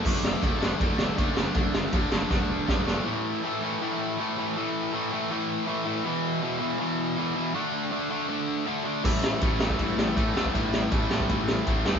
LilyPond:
<<
  \new Staff \with { instrumentName = "Distorted electric guitar" } { \clef bass \time 4/4 \key a \dorian \tempo 4 = 160 <d a d'>4 <d a d'>8 <d a d'>8 <d a d'>4 <d a d'>8 <d a d'>8 | <d a d'>4 <d a d'>8 <d a d'>8 <d a d'>4 <d a d'>8 <d a d'>8 | <a, e a>4 <a, e a>8 <a, e a>8 <a, e a>4 <a, e a>8 <a, e a>8 | <a, e a>4 <a, e a>8 <a, e a>8 <a, e a>4 <a, e a>8 <a, e a>8 |
<e, b, e>4 <e, b, e>8 <e, b, e>8 <e, b, e>4 <e, b, e>8 <e, b, e>8 | <d a d'>4 <d a d'>8 <d a d'>8 <d a d'>4 <d a d'>8 <d a d'>8 | <a, e a>4 <a, e a>8 <a, e a>8 <a, e a>4 <a, e a>8 <a, e a>8 | <a, e a>4 <a, e a>8 <a, e a>8 <a, e a>4 <a, e a>8 <a, e a>8 | }
  \new Staff \with { instrumentName = "Picked electric bass" } { \clef bass \time 4/4 \key a \dorian fis,,8 fis,,8 fis,,8 fis,,8 fis,,8 e,,8 fis,,8 fis,,8 | fis,,8 fis,,8 fis,,8 fis,,8 fis,,8 e,,8 fis,,8 fis,,8 | r1 | r1 |
r1 | r1 | a,,8 a,,8 a,,8 a,,8 a,,8 a,,8 a,8 e,8 | a,,4 a,,8 a,,8 a,,4 a,,8 g,8 | }
  \new DrumStaff \with { instrumentName = "Drums" } \drummode { \time 4/4 <cymc bd>8 sn8 <bd cymr>8 sn8 <bd cymr>8 sn8 <bd cymr>8 sn8 | <bd cymr>8 sn8 <bd cymr>8 sn8 <bd sn>4 <bd sn>8 sn8 | r4 r4 r4 r4 | r4 r4 r4 r4 |
r4 r4 r4 r4 | r4 r4 r4 r4 | <cymc bd>8 sn8 <bd cymr>8 sn16 bd16 <bd cymr>8 sn8 <bd cymr>8 sn16 bd16 | <bd cymr>8 sn8 <bd cymr>8 sn16 bd16 <bd cymr>8 sn8 <bd cymr>8 sn16 bd16 | }
>>